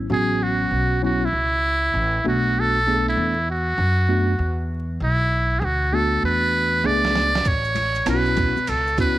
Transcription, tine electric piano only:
0.10 F#3 B3 C#4 F#4
1.02 F#3 B3 C#4 E4
2.24 A3 B3 D4 F#4
2.87 A3 B3 D4 G#4
2.94 A4
4.09 A3 B3 D4 F#4
5.92 A3 B3 D4 F#4
6.84 A3 B3 D4 G#4
8.06 B3 C#4 E4 F4
8.14 F#4
8.98 B3 C#4 E4 F#4

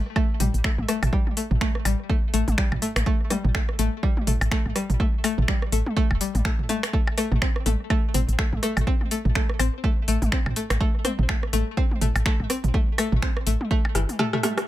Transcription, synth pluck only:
0.16 A3
0.40 G3
0.64 A3
0.88 A3
1.13 G3
1.37 A3
1.61 A3
1.85 G3
2.10 A3
2.34 A3
2.58 G3
2.82 A3
3.06 A3
3.31 G3
3.55 A3
3.79 A3
4.03 G3
4.27 A3
4.51 A3
4.76 G3
5.00 A3
5.24 A3
5.48 G3
5.72 A3
5.97 A3
6.21 G3
6.45 A3
6.69 A3
6.93 A3
7.18 A3
7.42 C4
7.66 A3
7.90 A3
8.14 C4
8.39 A3
8.63 A3
8.87 C4
9.11 A3
9.35 A3
9.60 C4
9.84 A3
10.08 A3
10.32 C4
10.56 A3
10.81 A3
11.05 C4
11.29 A3
11.53 A3
11.77 C4
12.01 A3
12.26 A3
12.50 C4
12.74 A3
12.98 A3
13.22 C4
13.47 A3
13.71 A3
13.95 E3
14.19 A3
14.33 A3
14.43 A3

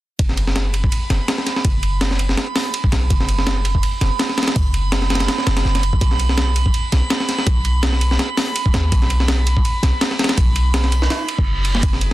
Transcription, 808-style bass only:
0.19 F#1
1.10 F#1
1.65 F#1
2.92 B1
3.10 F#1
4.01 F#1
4.56 F#1
5.47 F#1
5.65 F#1
6.01 B1
6.92 B1
7.47 B1
8.74 D#2
8.92 B1
9.83 B1
10.38 B1
11.39 F#1
11.83 F#1

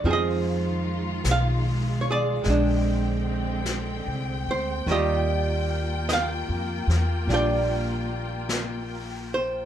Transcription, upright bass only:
0.04 F2
1.25 B1
2.46 A#1
4.07 C2
4.47 D2
4.87 D#2
6.49 F2
6.87 E2
7.27 A#1

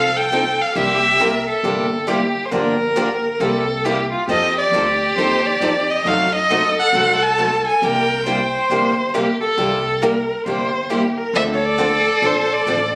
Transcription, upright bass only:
Already playing: C2
0.75 C2
1.63 G1
2.52 G1
3.40 C2
4.28 F2
4.72 D2
5.16 D#2
5.60 F2
6.05 F#2
6.93 C2
7.82 C2
8.70 G1
9.58 C2
10.46 G1
11.33 D2
12.22 A#1
12.66 A1

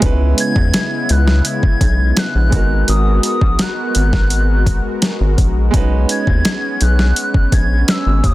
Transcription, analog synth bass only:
0.02 C#2
0.56 E2
1.10 C#2
1.63 B1
1.81 B1
2.35 A#1
2.53 G#1
2.88 G#1
3.42 A#1
3.96 G#1
5.21 G#1
5.38 A#1
5.74 B1
6.27 D#2
6.81 B1
7.35 A#1
7.52 A#1
8.06 G#1
8.24 D#2

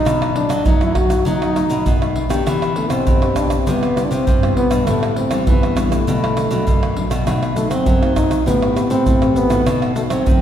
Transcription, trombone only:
Already playing: D#4
0.35 D4
0.66 D#4
0.82 E4
0.95 F#4
1.27 D#4
2.76 A3
2.90 C4
3.36 D4
3.60 C4
3.67 B3
4.05 D4
4.11 C4
4.57 B3
4.88 A3
5.17 C4
5.48 B3
5.85 B3
5.91 A3
7.57 A3
7.71 C4
8.16 D#4
8.47 B3
8.90 C4
9.35 B3
9.96 A3
10.10 C4

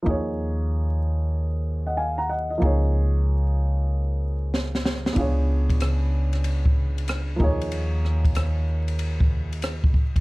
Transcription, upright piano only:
0.03 F3 A#3 D#4
0.08 G#4 C#5
1.87 D#5 F#5
1.97 F5 G#5
2.18 F#5 A#5
2.29 D#5 F#5
2.50 D#5
2.58 F3 A#3 D#4
2.64 G#4 C#5
5.13 B3 D4
5.17 F4 G#4 C#5
7.36 F3 A#3 D#4
7.42 G#4 C#5

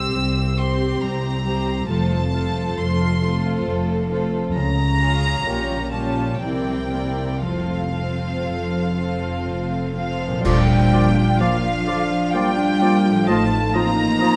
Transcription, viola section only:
Already playing: C4 G4
0.58 C4 G4
1.45 C4 G4
1.89 A3 F4
2.33 A3 F4
3.21 A3 F4
4.10 A3 F4
4.99 C#4 F4
5.45 C#4 F4
5.92 C#4 F4
6.41 C4 E4
6.91 C4 E4
7.41 C4 F4
7.93 C4 F4
8.96 C4 F4
9.95 C4 F4
10.44 D3 F4
10.68 F3
10.92 A#3
11.17 D4
11.40 A#3
11.64 F3
11.86 D3
12.10 F3
12.33 A#3
12.57 D4
12.80 A#3
13.04 F3
13.27 F3
13.51 A3
13.73 C4
13.96 D#4
14.20 C4

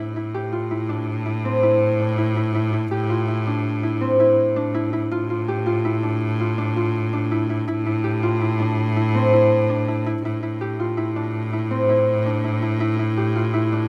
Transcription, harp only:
Already playing: C4 D4 E4 G4
0.16 E4
0.34 G4
0.52 F4
0.71 E4
0.89 D4
1.26 E4
1.45 C4
1.63 E4
2.00 D4
2.18 E4
2.37 E4
2.55 E4
2.73 E4
2.91 G4
3.10 F4
3.28 E4
3.47 D4
3.83 E4
4.01 C4
4.20 E4
4.56 D4
4.74 E4
4.93 E4
5.11 F4
5.30 F4
5.48 G4
5.66 F4
5.85 E4
6.03 D4
6.40 F4
6.58 D4
6.76 F4
7.13 D4
7.31 E4
7.50 E4
7.68 E4
7.86 E4
8.04 G4
8.23 F4
8.41 E4
8.59 D4
8.96 E4
9.15 C4
9.33 E4
9.70 D4
9.88 E4
10.06 E4
10.25 E4
10.43 E4
10.61 G4
10.80 F4
10.97 E4
11.16 D4
11.53 E4
11.71 C4
11.89 E4
12.26 D4
12.44 E4
12.62 E4
12.80 E4
12.99 E4
13.18 G4
13.35 F4
13.54 E4
13.72 D4

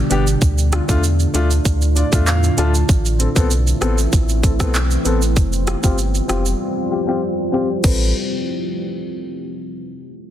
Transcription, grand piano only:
0.10 B3 D4 G4
0.72 D4 F4
0.88 A3 D4 F4
1.34 A3 D4 F4
1.95 D4 F4 D5
2.12 A3 D4 F4
2.27 F5
2.57 A3 D4 F4 A5
3.19 C4 A4
3.35 B3 C4 A4
3.81 B3 C4 A4
4.43 C4 A4
4.59 B3 C4 A4
5.05 B3 C4 A4
5.66 F4 G4
5.83 C4 F4 G4
6.28 C4 F4 G4
6.90 F4 G4
7.07 C4 F4 G4
7.52 C4 F4 G4
7.84 C4 A4 B4

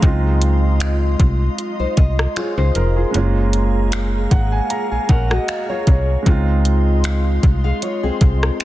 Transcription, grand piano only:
0.00 G#3 C4 D#4
0.06 F4
2.37 F4 G#4
2.75 A#4
2.96 F4 G#4
3.11 G#3 A#3
3.15 C#4 F4
4.31 F#5
4.52 G#5
4.70 A#5
4.91 G#5
5.09 F#5
5.30 D#5
5.48 F5
5.69 C#5
6.23 G#3 C4
6.27 D#4 F4

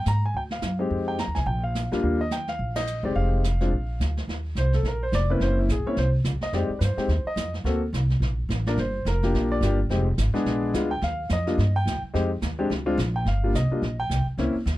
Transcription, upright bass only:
0.06 G#2
0.34 D2
0.62 F#2
0.90 F2
1.27 D#2
1.37 C2
1.46 A#1
1.91 D2
2.03 D#2
2.59 A#1
3.03 F#1
3.15 F1
3.71 A#1
4.00 D2
4.28 D#2
4.55 C2
4.83 A#1
5.12 F1
5.40 F#1
5.69 A#1
5.85 muted upright bass stroke
5.97 C2
6.24 C#2
6.41 muted upright bass stroke
6.53 F2
6.69 muted upright bass stroke
6.81 G2
6.97 muted upright bass stroke
7.08 D#2
7.24 muted upright bass stroke
7.36 F2
7.64 D2
7.93 C2
8.20 A#1
8.49 A1
8.77 G1
9.05 F1
9.34 A#1
9.61 G1
9.89 F1
10.18 G#1
10.34 muted upright bass stroke
10.45 A#1
10.74 D2
11.02 D#2
11.30 F2
11.58 G2
11.86 D2
12.02 muted upright bass stroke
12.14 F2
12.42 D#2
12.70 D2
12.98 A#1
13.25 G1
13.54 C2
13.71 muted upright bass stroke
13.82 A#1
14.10 C2
14.26 muted upright bass stroke
14.37 C#2
14.55 muted upright bass stroke
14.66 D#2

